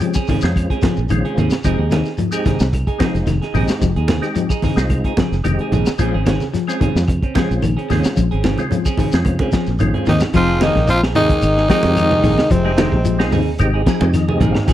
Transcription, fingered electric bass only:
0.43 F2
0.98 A#1
1.11 A#1
1.38 D#2
1.51 muted fingered electric bass stroke
1.65 F1
1.78 D#2
2.60 C2
3.15 F1
3.27 F1
3.54 A#1
3.82 F1
3.96 D#2
4.77 C2
5.32 F1
5.45 F1
5.72 A#1
5.88 muted fingered electric bass stroke
5.99 A#1
6.15 G#1
6.95 F2
7.51 A#1
7.64 A#1
7.91 D#2
8.05 muted fingered electric bass stroke
8.17 A#1
8.33 G#1
9.13 F2
9.68 A#1
9.81 A#1
10.08 D#2
10.23 muted fingered electric bass stroke
10.34 F1
10.76 A#1
11.17 D#2
11.43 G#1
11.84 F2
12.24 A#1
12.51 F1
12.92 A#1
13.33 D#2
13.60 G#1
14.01 F2
14.40 A#1
14.68 A#1

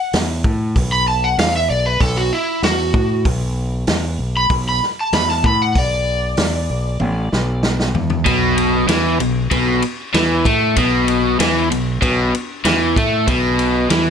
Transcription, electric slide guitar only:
Already playing: F#5
0.92 B5
1.08 A5
1.24 F#5
1.39 F5
1.56 E5
1.70 D5
1.86 B4
2.02 A4
2.17 F#4
2.33 E4
2.64 F#4
4.37 B5
4.69 B5
5.01 A5
5.14 B5
5.30 A5
5.46 B5
5.62 F#5
5.79 D5

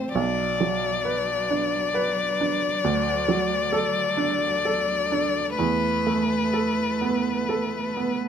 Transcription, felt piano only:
Already playing: A1 C4 C5
0.15 B1
0.60 F#3
1.05 B4
1.50 D4
1.94 B4
2.41 D4
2.84 D2
3.28 F#3
3.72 A4
4.17 D4
4.65 A4
5.12 D4
5.59 E2
6.07 A3
6.53 A4
7.01 B3
7.49 A4
7.97 B3

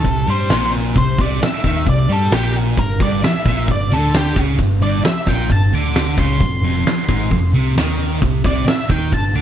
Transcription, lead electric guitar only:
Already playing: A4
0.30 C5
0.98 C5
1.21 D5
1.44 E5
1.89 D5
2.12 A4
2.34 G4
2.79 A#4
3.02 D5
3.25 E5
3.72 D5
3.93 A4
4.16 G4
4.83 D5
5.05 E5
5.28 G5
5.52 A5
5.75 D6
6.19 C6
8.46 D5
8.68 E5
8.91 G5
9.14 A5
9.36 D6

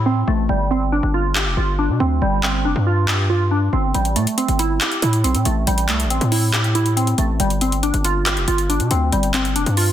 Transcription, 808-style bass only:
Already playing: A2
0.28 A1
0.49 G1
1.03 G1
1.46 F1
1.57 G1
1.89 B2
2.00 D2
2.22 G1
2.65 F1
2.76 G2
3.73 G1
3.94 A1
4.16 A2
4.48 G1
5.02 A2
5.24 B1
5.35 A2
5.46 A1
5.67 A1
5.89 C2
6.05 A1
6.21 A2
7.18 A1
7.40 G1
7.94 G1
8.37 F1
8.48 G1
8.80 B2
8.91 D2
9.12 G1
9.56 F1
9.66 G2

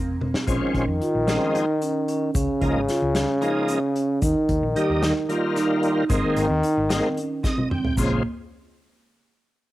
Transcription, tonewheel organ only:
0.47 F3 G#3 C4 C#4
1.27 F3 G#3 C4 D#4
2.61 F3 G#3 A#3 D#4
3.41 F3 G#3 A#3 D#4
4.76 D#3 G3 A#3 D#4
5.29 D#3 G3 A#3 F4
6.09 D#3 G#3 A#3 C4
6.90 D#3 G#3 A#3 C4
7.44 D#5
7.71 G5
7.99 C#3 F3 G#3 C4

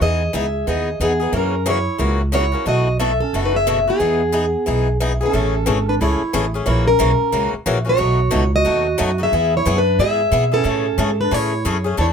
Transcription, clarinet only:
0.02 G#4
0.34 G#4
0.68 G#4
1.04 B3
1.35 C#4
1.69 E4
2.36 E4
2.67 F#4
3.00 A4
3.22 C#4
3.44 D#4
3.54 G#4
3.89 B3
5.23 C#4
5.88 D4
6.01 E4
6.68 E4
6.89 C#4
7.89 F#4
8.56 F#4
9.22 G#4
9.56 E4
9.76 D4
10.01 G#4
10.56 C#4
11.22 D4
11.35 E4
12.01 E4

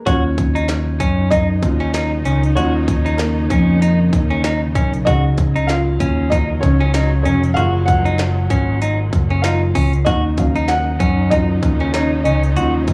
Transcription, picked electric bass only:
0.07 D#2
1.00 F#2
1.62 D#2
2.25 C#2
2.57 D#2
3.50 F2
4.13 D#2
4.75 B1
5.07 C#2
6.00 D#2
6.63 C#2
7.25 F1
7.57 F#1
8.50 G#1
9.13 F#1
9.75 C#2
10.07 D#2
11.00 F#2
11.63 D#2
12.25 C#2
12.56 D#2

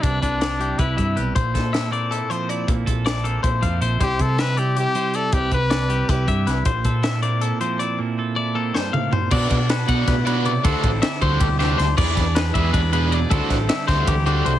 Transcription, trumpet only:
0.02 D4
0.22 D4
0.79 E4
4.03 G4
4.22 A4
4.40 B4
4.59 G4
4.79 G4
5.16 A4
5.33 G4
5.53 B4
6.10 G4

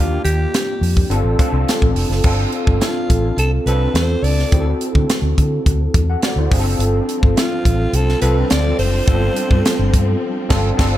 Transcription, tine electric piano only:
Already playing: A#3 D4 F4 G4
1.10 C4 D4 F4 A4
1.39 C4 D4 F4 A4
2.24 C4 D4 F4 A4
3.67 C4 D4 F4 A4
4.52 C4 E4 F#4 G#4
4.60 A4
6.10 A4 F#5
6.24 F#4 D5
6.38 E4 C5
6.51 C4 D4 F4 G#4
6.59 A4
8.21 C4 D4 F4 A4
9.07 B3 D4 F4 A4
9.13 C4
10.49 C4 D4 F4 A4
10.77 C4 D4 F4 A4

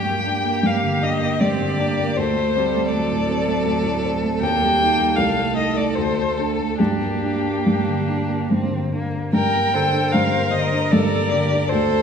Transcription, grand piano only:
Already playing: G2
0.06 A#3
0.26 D4
0.45 A#3
0.63 G2
0.83 D3
1.01 D4
1.20 A#3
1.41 G2
1.61 D3
1.79 D4
1.99 A#3
2.18 D2
2.36 A3
2.56 C4
2.76 A3
2.93 D2
3.12 A2
3.29 C4
3.47 A3
3.65 D2
3.84 A2
4.05 C4
4.24 A3
4.41 D#2
4.62 G3
4.82 D#4
4.99 G3
5.18 C2
5.37 A3
5.57 D#4
5.77 A3
5.98 D2
6.18 A3
6.39 D4
6.60 A3
6.80 G2
7.01 A#3
7.24 D4
7.46 A#3
7.66 G2
7.87 D3
8.09 D4
8.29 A#3
8.51 G2
8.71 D3
8.93 D4
9.15 A#3
9.33 G2
9.54 A#3
9.75 D3
9.93 D4
10.14 G2
10.34 A#3
10.52 D3
10.73 D4
10.93 G2
11.14 A#3
11.33 D3
11.53 D4
11.72 D2
11.89 A3

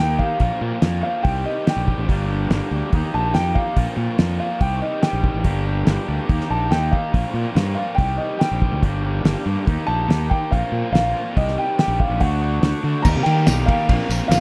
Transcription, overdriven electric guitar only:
Already playing: D#3
0.00 A#3 D#4 G4
0.39 A#2 F3 A#3 C4 F4
0.61 A#3 C4 F4
0.81 A#2 F3 A#3 C4 F4
1.02 A#3 C4 F4
1.23 C3 D#3 G3 C4 G4
1.45 G3 C4 G4
1.65 D#3 G3 C4 G4
2.09 G2 D3 G3 A#3 D4 G4
2.30 G3 A#3 D4 G4
2.51 G2 D3 G3 A#3 D4 G4
2.73 G3 A#3 D4 G4
2.93 D#3 A#3 D#4 G4
3.14 A#3 D#4 G4
3.34 D#3 A#3 D#4 G4
3.76 A#2 F3 A#3 C4 F4
3.97 A#3 C4 F4
4.18 A#2 F3 A#3 C4 F4
4.39 A#3 C4 F4
4.60 C3 D#3 G3 C4 G4
4.81 G3 C4 G4
5.02 D#3 G3 C4 G4
5.43 G2 D3 G3 A#3 D4 G4
5.66 G3 A#3 D4 G4
5.85 G2 D3 G3 A#3 D4 G4
6.07 G3 A#3 D4 G4
6.27 D#3 A#3 D#4 G4
6.49 A#3 D#4 G4
6.70 D#3 A#3 D#4 G4
7.12 A#2 F3 A#3 C4 F4
7.34 A#3 C4 F4
7.55 A#2 F3 A#3 C4 F4
7.76 A#3 C4 F4
7.98 C3 D#3 G3 C4 G4
8.19 G3 C4 G4
8.39 D#3 G3 C4 G4
8.82 G2 D3 G3 A#3 D4 G4
9.02 G3 A#3 D4 G4
9.24 G2 D3 G3 A#3 D4 G4
9.46 G3 A#3 D4 G4
9.67 D#3 A#3 D#4 G4
9.88 A#3 D#4 G4
10.08 D#3 A#3 D#4 G4
10.51 A#2 F3 A#3 C4 F4
10.72 A#3 C4 F4
10.92 A#2 F3 A#3 C4 F4
11.15 A#3 C4 F4
11.36 C3 D#3 G3 C4 G4
11.57 G3 C4 G4
11.78 D#3 G3 C4 G4
12.21 D3 A3 D4 F#4
12.41 A3 D4 F#4
12.63 D3 A3 D4 F#4
12.84 A3 D4 F#4
13.05 D#3 G3 A#3 G4 A#4
13.27 D#3 G3 A#3 G4 A#4
13.47 D#3 G3 A#3 G4 A#4
13.67 D#3 G3 A#3 G4 A#4
13.89 A#3 C4 F4 A#4
14.10 A#3 C4 F4 A#4
14.30 A#3 C4 F4 A#4

